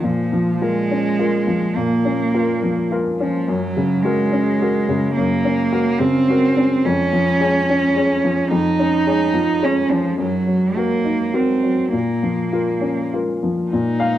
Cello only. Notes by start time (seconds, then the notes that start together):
0.05 F3
0.62 G#3
1.76 A#3
3.20 F3
3.48 F#3
4.03 G#3
5.16 A#3
5.99 C4
6.85 C#4
8.51 D#4
9.64 C#4
9.92 F3
10.20 F#3
10.77 A#3
11.35 C4
11.94 A#3
13.71 D#4